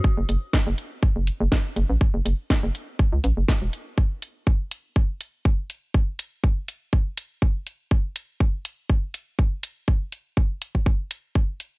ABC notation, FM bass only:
X:1
M:4/4
L:1/16
Q:"Swing 16ths" 1/4=122
K:F#m
V:1 name="FM bass" clef=bass
z F,,, F,,, z2 F,,, z3 F,,, z F,,, z2 F,,, A,,, | z F,,, F,,, z2 F,,, z3 C,, A,,, F,,, z E,,, z2 | z16 | z16 |
z16 | z16 |]